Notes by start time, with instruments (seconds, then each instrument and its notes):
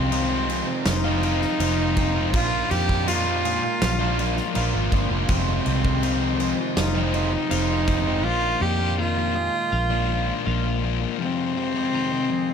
Already playing: fingered electric bass C2, distorted electric guitar F2 C3 F3 G#3 C4 F4, clean electric guitar F2 C3 G#3 F4, cello C4, ambient pad C5 F5 A#5
0.11 distorted electric guitar F2 C3 F3 G#3 C4 F4, clean electric guitar D#3, crash
0.30 distorted electric guitar F3 G#3 C4 F4
0.48 distorted electric guitar F3 G#3 C4 F4, clean electric guitar G#3, muted distorted electric guitar stroke, crash
0.68 muted distorted electric guitar stroke
0.86 fingered electric bass F1, cello D#4, clean electric guitar F4, snare, crash
1.04 distorted electric guitar F3 G#3 C4 F4
1.22 distorted electric guitar F3 G#3 C4 F4, clean electric guitar C4, crash
1.42 muted distorted electric guitar stroke, snare
1.59 fingered electric bass F1, distorted electric guitar F2 C3 F3 G#3 C4 F4, clean electric guitar F4, crash
1.79 distorted electric guitar F3 G#3 C4 F4
1.96 distorted electric guitar F3 G#3 C4 F4, clean electric guitar C4, kick, crash
2.16 distorted electric guitar F3 G#3 C4 F4
2.33 fingered electric bass A#1, distorted electric guitar A#2 F3 A#3 D4 F4, clean electric guitar A#2, ambient pad D#3 A#4, cello F4, kick, crash
2.70 fingered electric bass F2, clean electric guitar D#3, distorted electric guitar F3 A#3 D4 F4, cello G4, crash
2.88 distorted electric guitar A#3 D4 F4, kick
3.07 distorted electric guitar A#2 F3 A#3 D4 F4, clean electric guitar D#3, cello F4, crash
3.25 distorted electric guitar A#3 D4 F4
3.44 distorted electric guitar F3 A#3 D4 F4, clean electric guitar G#3, muted distorted electric guitar stroke, crash
3.63 muted distorted electric guitar stroke
3.81 fingered electric bass A#1, clean electric guitar F4, snare, crash
3.99 distorted electric guitar A#3 D4 F4
4.18 distorted electric guitar F3 A#3 D4 F4, crash
4.37 muted distorted electric guitar stroke, snare
4.54 fingered electric bass A#1, distorted electric guitar A#2 F3 A#3 D4 F4, clean electric guitar F4, crash
4.73 fingered electric bass G#1, distorted electric guitar A#3 D4 F4
4.92 fingered electric bass G1, distorted electric guitar F3 A#3 D4 F4, kick, crash
5.11 fingered electric bass F1, distorted electric guitar A#3 D4 F4
5.29 fingered electric bass F1, distorted electric guitar F2 C3 F3 G#3 C4 F4, clean electric guitar F2, cello C4, ambient pad C5 F5, kick, crash
5.66 fingered electric bass C2, distorted electric guitar C3 F3 G#3 C4, clean electric guitar C3, crash
5.84 distorted electric guitar F3 G#3 C4 F4, kick
6.02 distorted electric guitar F2 C3 F3 G#3 C4 F4, clean electric guitar D#3, crash
6.21 distorted electric guitar F3 G#3 C4
6.40 distorted electric guitar F3 G#3 C4 F4, clean electric guitar G#3, muted distorted electric guitar stroke, crash
6.59 muted distorted electric guitar stroke
6.77 fingered electric bass F1, cello D#4, clean electric guitar F4, snare, crash
6.95 distorted electric guitar F3 G#3 C4 F4
7.13 distorted electric guitar C3 F3 G#3 C4 F4, clean electric guitar C4, crash
7.32 muted distorted electric guitar stroke
7.50 fingered electric bass F1, distorted electric guitar F2 C3 F3 G#3 C4 F4, clean electric guitar F4, crash
7.69 distorted electric guitar F3 G#3 C4
7.87 distorted electric guitar C3 F3 G#3 C4, clean electric guitar C4, kick, crash
8.05 distorted electric guitar F3 G#3 C4 F4
8.24 fingered electric bass A#1, distorted electric guitar A#2 F3 A#3 D4, clean electric guitar A#2, ambient pad D#3 A#4, cello F4
8.61 fingered electric bass F2, distorted electric guitar A#2 F3 A#3 D4, clean electric guitar D#3, cello G4
8.79 distorted electric guitar F3 A#3 D4
8.98 distorted electric guitar A#2 F3 A#3 D4, clean electric guitar D#3, cello F4
9.16 distorted electric guitar F3 A#3 D4
9.35 clean electric guitar G#3, muted distorted electric guitar stroke
9.72 fingered electric bass A#1, clean electric guitar F4
9.90 distorted electric guitar F3 A#3 D4
10.08 distorted electric guitar A#2 F3 A#3 D4
10.46 fingered electric bass A#1, distorted electric guitar A#2 F3 A#3 D4, clean electric guitar F4
10.65 distorted electric guitar F3 A#3 D4
10.82 distorted electric guitar A#2 F3 A#3 D4
11.00 distorted electric guitar F3 A#3 D4
11.18 distorted electric guitar F2 C3 F3 G#3 C4, clean electric guitar F2, cello C4
11.56 distorted electric guitar C3 F3 G#3 C4, clean electric guitar C3
11.74 distorted electric guitar F3 G#3 C4
11.93 distorted electric guitar F2 C3 F3 G#3 C4, clean electric guitar D#3
12.12 distorted electric guitar F3 G#3 C4
12.31 clean electric guitar G#3, muted distorted electric guitar stroke